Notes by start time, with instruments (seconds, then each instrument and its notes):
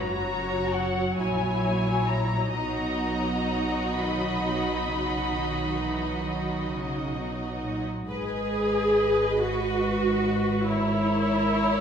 Already playing: double bass section F#1, cello section F#2, viola section F#3 F#4, violin section C#5 A#5
0.74 violin section F#5
1.18 double bass section A#1, cello section A#2, viola section E4, violin section C#5 G#5
2.07 violin section A#5
2.54 double bass section B1, cello section B2, viola section F#3 D#4, violin section F#4 D#5 A#5
3.93 cello section D#3, violin section B5
4.39 cello section B2
4.85 cello section C#3
5.30 cello section D#3
5.76 cello section E3
6.22 cello section D#3
6.68 cello section C#3
7.16 cello section B2
7.64 cello section A#2
8.09 double bass section G#1, cello section G#2, viola section G#4, violin section B4 D#5
9.39 viola section F#4
10.66 viola section E4, violin section A#4 C#5